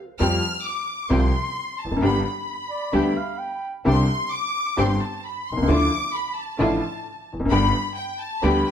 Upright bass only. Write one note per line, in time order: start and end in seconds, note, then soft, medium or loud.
0.20 0.40 F2 medium
1.10 1.30 C2 medium
1.85 1.90 E1 soft
1.91 1.96 F1 medium
1.96 2.00 F#1 medium
2.01 2.20 G1 medium
2.93 3.13 D2 medium
3.85 4.05 C2 medium
4.78 4.97 G1 medium
5.50 5.56 B1 soft
5.57 5.61 C2 medium
5.62 5.68 C#2 medium
5.68 5.88 D2 medium
6.59 6.78 A1 medium
7.34 7.39 E1 soft
7.39 7.45 F1 medium
7.46 7.51 F#1 medium
7.51 7.70 G1 medium
8.43 8.62 D2 medium